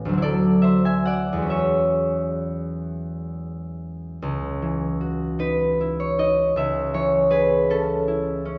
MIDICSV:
0, 0, Header, 1, 2, 480
1, 0, Start_track
1, 0, Key_signature, 4, "major"
1, 0, Tempo, 859599
1, 838, Time_signature, 6, 3, 24, 8
1, 839, Tempo, 903614
1, 2279, Key_signature, 4, "minor"
1, 2279, Tempo, 785340
1, 3239, Tempo, 764331
1, 4996, End_track
2, 0, Start_track
2, 0, Title_t, "Harp"
2, 0, Program_c, 0, 46
2, 0, Note_on_c, 0, 33, 52
2, 0, Note_on_c, 0, 52, 44
2, 0, Note_on_c, 0, 59, 45
2, 0, Note_on_c, 0, 61, 44
2, 0, Note_on_c, 0, 73, 58
2, 0, Note_on_c, 0, 76, 80
2, 0, Note_on_c, 0, 83, 84
2, 29, Note_on_c, 0, 38, 48
2, 49, Note_on_c, 0, 54, 42
2, 73, Note_on_c, 0, 60, 43
2, 90, Note_off_c, 0, 33, 0
2, 98, Note_on_c, 0, 64, 45
2, 102, Note_off_c, 0, 52, 0
2, 113, Note_off_c, 0, 59, 0
2, 124, Note_on_c, 0, 74, 74
2, 125, Note_off_c, 0, 61, 0
2, 131, Note_on_c, 0, 69, 53
2, 136, Note_off_c, 0, 83, 0
2, 144, Note_off_c, 0, 73, 0
2, 339, Note_off_c, 0, 76, 0
2, 345, Note_on_c, 0, 76, 64
2, 354, Note_on_c, 0, 72, 47
2, 474, Note_off_c, 0, 76, 0
2, 475, Note_on_c, 0, 80, 69
2, 480, Note_on_c, 0, 76, 52
2, 588, Note_on_c, 0, 78, 64
2, 591, Note_off_c, 0, 74, 0
2, 597, Note_on_c, 0, 74, 50
2, 679, Note_off_c, 0, 80, 0
2, 741, Note_on_c, 0, 40, 45
2, 768, Note_on_c, 0, 56, 34
2, 793, Note_on_c, 0, 61, 34
2, 816, Note_off_c, 0, 38, 0
2, 818, Note_on_c, 0, 66, 37
2, 831, Note_off_c, 0, 76, 0
2, 838, Note_off_c, 0, 60, 0
2, 838, Note_on_c, 0, 76, 60
2, 845, Note_on_c, 0, 73, 48
2, 860, Note_off_c, 0, 72, 0
2, 861, Note_off_c, 0, 74, 0
2, 866, Note_off_c, 0, 69, 0
2, 2159, Note_off_c, 0, 54, 0
2, 2206, Note_off_c, 0, 64, 0
2, 2249, Note_off_c, 0, 40, 0
2, 2285, Note_on_c, 0, 37, 49
2, 2529, Note_on_c, 0, 52, 36
2, 2732, Note_off_c, 0, 78, 0
2, 2757, Note_off_c, 0, 66, 0
2, 2764, Note_on_c, 0, 66, 41
2, 2928, Note_off_c, 0, 56, 0
2, 2956, Note_off_c, 0, 61, 0
2, 2997, Note_on_c, 0, 63, 42
2, 3002, Note_on_c, 0, 71, 68
2, 3004, Note_off_c, 0, 76, 0
2, 3013, Note_off_c, 0, 73, 0
2, 3253, Note_on_c, 0, 64, 40
2, 3373, Note_on_c, 0, 73, 62
2, 3484, Note_off_c, 0, 63, 0
2, 3490, Note_on_c, 0, 63, 39
2, 3495, Note_on_c, 0, 75, 65
2, 3719, Note_off_c, 0, 37, 0
2, 3726, Note_on_c, 0, 37, 48
2, 3734, Note_on_c, 0, 76, 67
2, 3744, Note_off_c, 0, 66, 0
2, 3744, Note_off_c, 0, 71, 0
2, 3746, Note_off_c, 0, 52, 0
2, 3746, Note_off_c, 0, 63, 0
2, 3747, Note_off_c, 0, 75, 0
2, 3958, Note_off_c, 0, 73, 0
2, 3964, Note_on_c, 0, 52, 41
2, 3967, Note_on_c, 0, 73, 61
2, 4195, Note_on_c, 0, 71, 73
2, 4198, Note_on_c, 0, 68, 45
2, 4441, Note_on_c, 0, 61, 42
2, 4446, Note_on_c, 0, 69, 62
2, 4611, Note_off_c, 0, 71, 0
2, 4672, Note_off_c, 0, 64, 0
2, 4680, Note_on_c, 0, 64, 43
2, 4908, Note_off_c, 0, 61, 0
2, 4916, Note_on_c, 0, 61, 42
2, 4996, Note_off_c, 0, 37, 0
2, 4996, Note_off_c, 0, 52, 0
2, 4996, Note_off_c, 0, 61, 0
2, 4996, Note_off_c, 0, 64, 0
2, 4996, Note_off_c, 0, 68, 0
2, 4996, Note_off_c, 0, 69, 0
2, 4996, Note_off_c, 0, 73, 0
2, 4996, Note_off_c, 0, 76, 0
2, 4996, End_track
0, 0, End_of_file